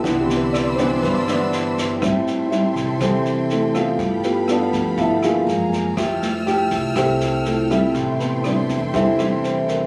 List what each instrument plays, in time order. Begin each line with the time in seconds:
0.04 upright bass C2, nylon-string guitar C3 E3 B3 D4, tine electric piano E4, string section D5 B5 C6 E6, kick, snare
0.21 tine electric piano G4
0.25 tine electric piano D3 E3 B3
0.30 snare
0.36 tine electric piano B4
0.53 tine electric piano D5, cross-stick, snare
0.76 nylon-string guitar E3 B3 D4, tine electric piano C5, kick, snare
1.03 upright bass G2, nylon-string guitar G2, tine electric piano B4, kick, snare
1.28 nylon-string guitar E3 B3 D4, cross-stick, snare
1.53 snare
1.78 kick, snare
2.01 nylon-string guitar A2 G3 C4 E4, upright bass A2, string section A4 E5 G5 C6, kick, cross-stick, snare
2.27 snare
2.51 nylon-string guitar G3 C4 E4, snare
2.75 upright bass E2, tine electric piano C3 G3, kick, snare
3.00 upright bass E2, nylon-string guitar E3 G3 C4 E4, tine electric piano C4 G4 A4 C5, kick, cross-stick, snare
3.25 snare
3.50 tine electric piano A3 C4 E4 A4, snare
3.74 nylon-string guitar B3 F4 A4, kick, cross-stick, snare
3.98 upright bass G2, nylon-string guitar G3, string section A4 F5 B5, kick, snare
4.23 tine electric piano B3 F4 G4 B4, snare
4.48 nylon-string guitar B3 F4 A4, tine electric piano A4 B4 D5, cross-stick, snare
4.52 tine electric piano D4
4.73 upright bass D2, tine electric piano F3 A3 B3, kick, snare
4.97 upright bass G2, nylon-string guitar D3 B3 F4 A4, tine electric piano E4, kick, snare
5.01 tine electric piano E5
5.22 nylon-string guitar A#3 F4 G#4, cross-stick, snare
5.47 upright bass F#2, tine electric piano F3 G#3 A#3, string section G#4 F5 G#5 A#5, snare
5.72 kick, snare
5.96 upright bass F2, nylon-string guitar F3 A3 E4 G4, string section A4 G5 E6 F6, kick, cross-stick, snare
6.22 tine electric piano G3 A3, snare
6.46 nylon-string guitar A3 E4 G4, snare
6.71 upright bass C2, kick, snare
6.96 upright bass C2, nylon-string guitar C3 A3 E4 G4, tine electric piano C4 G4 A4 C5, kick, cross-stick, snare
7.20 snare
7.45 tine electric piano A3 E4 F4 A4, snare
7.70 nylon-string guitar G3 C4 E4, kick, cross-stick, snare
7.94 upright bass A1, nylon-string guitar A2, tine electric piano C3 G3, string section E5 C6, kick, snare
8.20 tine electric piano B3 B4, snare
8.44 nylon-string guitar G3 C4 E4, tine electric piano D4 D5, cross-stick, snare
8.69 upright bass E2, kick, snare
8.93 upright bass E2, nylon-string guitar E3 G3 C4 E4, tine electric piano E4 A4 C5 E5, kick, snare
9.19 nylon-string guitar G3 C4 E4, cross-stick, snare
9.44 tine electric piano C5, snare
9.68 tine electric piano A#4, kick, snare